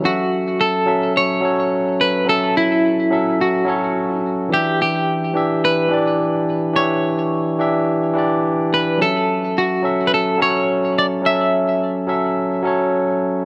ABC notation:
X:1
M:4/4
L:1/16
Q:"Swing 16ths" 1/4=107
K:F#phr
V:1 name="Clean electric guitar"
F4 A4 c4 z2 B2 | A2 E6 F6 z2 | G2 G6 B8 | c12 z2 B2 |
A4 F3- F/2 B/2 A2 c4 d2 | e12- e2 z2 |]
V:2 name="Tine electric piano"
[F,CAe]6 [F,CAe]4 [F,CAc]6 | [F,CAe]6 [F,CAe]4 [F,CAc]6 | [E,DGe]6 [E,DGe]4 [E,DGd]6 | [E,DGe]6 [E,DGe]4 [E,DGd]6 |
[F,CAe]6 [F,CAe]4 [F,CAc]6 | [F,CAe]6 [F,CAe]4 [F,CAc]6 |]